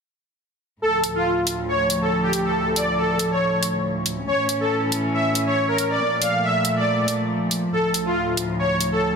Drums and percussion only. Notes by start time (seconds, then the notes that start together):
1.04 closed hi-hat
1.47 closed hi-hat
1.90 closed hi-hat
2.33 closed hi-hat
2.76 closed hi-hat
3.19 closed hi-hat
3.63 closed hi-hat
4.06 closed hi-hat
4.49 closed hi-hat
4.92 closed hi-hat
5.35 closed hi-hat
5.78 closed hi-hat
6.22 closed hi-hat
6.65 closed hi-hat
7.08 closed hi-hat
7.51 closed hi-hat
7.94 closed hi-hat
8.37 closed hi-hat
8.81 closed hi-hat